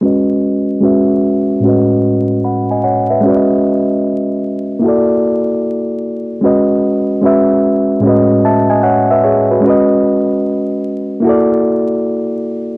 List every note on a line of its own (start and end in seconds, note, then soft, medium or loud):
0.01 0.79 G#3 medium
0.01 0.81 C#4 medium
0.01 0.81 F#4 medium
0.01 0.83 B4 medium
0.06 0.85 D#5 medium
0.80 1.60 G#3 medium
0.80 1.62 C#4 medium
0.80 1.63 F#4 medium
0.80 1.64 B4 medium
0.85 1.64 E5 medium
1.60 3.18 A2 medium
1.60 3.19 G#3 soft
1.60 3.20 C#4 medium
1.65 3.21 F#4 medium
1.65 2.44 B4 medium
1.65 2.45 D#5 medium
2.44 2.69 F#5 soft
2.44 2.68 B5 medium
2.71 2.84 D#5 medium
2.71 2.83 G#5 medium
2.84 3.08 C#5 medium
2.84 3.08 F#5 medium
3.10 3.26 B4 soft
3.10 3.48 E5 medium
3.21 4.79 G#3 medium
3.21 4.80 C#4 medium
3.26 4.81 F#4 medium
3.26 4.82 B4 medium
3.26 3.35 D5 medium
3.36 4.87 D#5 medium
4.79 6.38 A#3 medium
4.79 6.39 E4 medium
4.84 6.41 F#4 medium
4.84 6.42 A4 medium
4.88 6.43 D5 medium
6.41 7.20 G#3 medium
6.41 7.22 C#4 medium
6.41 7.23 F#4 medium
6.41 7.24 B4 medium
6.46 7.25 D#5 medium
7.22 8.01 G#3 medium
7.22 8.02 C#4 medium
7.22 8.04 F#4 medium
7.22 8.04 B4 medium
7.26 8.05 E5 medium
8.00 9.59 A2 medium
8.00 9.59 G#3 medium
8.00 9.60 C#4 medium
8.06 8.44 F#4 medium
8.06 8.45 B4 medium
8.06 8.46 D#5 medium
8.45 8.69 E5 soft
8.45 8.69 A5 medium
8.70 8.83 D#5 soft
8.70 8.83 G#5 medium
8.83 9.08 C#5 medium
8.83 9.08 F#5 medium
9.11 9.24 B4 soft
9.11 9.24 E5 medium
9.24 9.49 G#4 medium
9.24 9.48 C#5 medium
9.51 9.64 F#4 soft
9.51 9.66 B4 medium
9.60 11.19 G#3 medium
9.60 11.20 C#4 medium
9.65 11.21 F#4 medium
9.65 11.22 B4 medium
9.70 11.23 D#5 medium
11.20 12.77 A#3 medium
11.20 12.77 E4 medium
11.25 12.77 F#4 medium
11.25 12.77 A4 medium
11.29 12.77 D5 medium